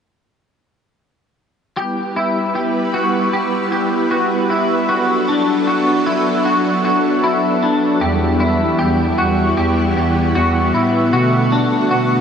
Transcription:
1.76 G3 B3 E4 G4 B4
2.16 E4
2.55 G4
2.94 F#4
3.33 G4
3.72 G4
4.11 F#4
4.50 E4
4.89 F#3 D4 F#4 A4
5.28 D4
5.67 F#4
6.06 E4
6.45 F#4
6.85 F#4
7.24 E4
7.62 D4
8.01 E2 E3 G3 B3 E4 G4
8.40 E4
8.79 E2 G4
9.18 E2 F#4
9.57 E2 G4
9.96 E2 G4
10.35 E2 F#4
10.73 A2 E4
11.12 B2 D3 A3 F#4
11.52 D4
11.91 B2 F#4

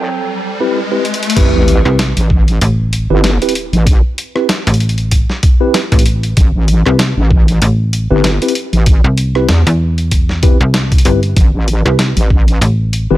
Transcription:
Already playing: C4 A4 G5, riser
0.60 C4 E4 G4 B4
0.92 C4 E4 G4 B4
1.05 closed hi-hat
1.14 closed hi-hat
1.23 closed hi-hat
1.30 closed hi-hat
1.36 A1 C4 E4 G4 B4, kick, closed hi-hat, crash, sub drop
1.54 A1
1.68 closed hi-hat
1.85 C2 C4 E4 G4 B4, cross-stick
1.99 snare, closed hi-hat
2.16 A1, closed hi-hat
2.30 kick
2.48 closed hi-hat
2.61 A1, closed hi-hat
2.93 closed hi-hat
3.10 G1 C4 E4 G4 B4
3.24 snare, closed hi-hat
3.42 C4 E4 G4 B4, closed hi-hat
3.49 closed hi-hat
3.55 closed hi-hat
3.72 A1, closed hi-hat
3.87 kick, closed hi-hat
4.18 closed hi-hat
4.36 C4 E4 G4 B4, cross-stick
4.49 snare, closed hi-hat
4.67 A1, closed hi-hat
4.74 closed hi-hat
4.80 closed hi-hat
4.89 closed hi-hat
4.98 closed hi-hat
5.11 kick, closed hi-hat
5.30 snare
5.43 kick, closed hi-hat
5.61 C4 E4 G4 B4
5.74 snare, closed hi-hat
5.92 A1 C4 E4 G4 B4, kick, closed hi-hat
5.99 closed hi-hat
6.06 closed hi-hat
6.23 closed hi-hat
6.37 A1, kick, closed hi-hat
6.55 A1
6.68 closed hi-hat
6.86 C2 C4 E4 G4 B4, cross-stick
6.99 snare, closed hi-hat
7.17 A1
7.31 kick
7.48 closed hi-hat
7.62 A1, closed hi-hat
7.93 closed hi-hat
8.11 G1 C4 E4 G4 B4
8.24 snare, closed hi-hat
8.42 C4 E4 G4 B4, closed hi-hat
8.48 closed hi-hat
8.55 closed hi-hat
8.73 A1, closed hi-hat
8.86 kick, closed hi-hat
9.04 C2
9.18 closed hi-hat
9.35 C4 E4 G4 B4, cross-stick
9.49 E2, snare, closed hi-hat
9.67 E2, closed hi-hat
9.98 closed hi-hat
10.11 kick, closed hi-hat
10.29 snare
10.43 C4 E4 G4 B4, kick, closed hi-hat
10.61 C2
10.74 snare, closed hi-hat
10.92 kick, closed hi-hat
10.98 closed hi-hat
11.05 G1 C4 E4 G4 B4, closed hi-hat
11.23 closed hi-hat
11.36 A1, kick, closed hi-hat
11.54 A1
11.68 closed hi-hat
11.85 C2 C4 E4 G4 B4, cross-stick
11.99 snare, closed hi-hat
12.16 A1, closed hi-hat
12.30 kick
12.48 closed hi-hat
12.61 A1, closed hi-hat
12.93 closed hi-hat
13.11 G1 C4 E4 G4 B4

